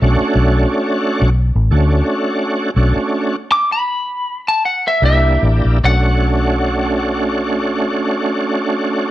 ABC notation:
X:1
M:4/4
L:1/16
Q:"Swing 16ths" 1/4=79
K:Bm
V:1 name="Lead electric guitar"
z16 | z4 d' b4 a f e e2 z2 | f16 |]
V:2 name="Tonewheel organ"
[A,CDF]8 z2 [A,CDF]6 | [A,CDF]4 z8 [_B,DEG]4 | [A,CDF]16 |]
V:3 name="Fingered electric bass" clef=bass
B,,, z B,,,2 z3 B,,,2 A,,, D,,2 z4 | B,,, z8 z3 =C,,2 A,,, _B,,, | B,,,16 |]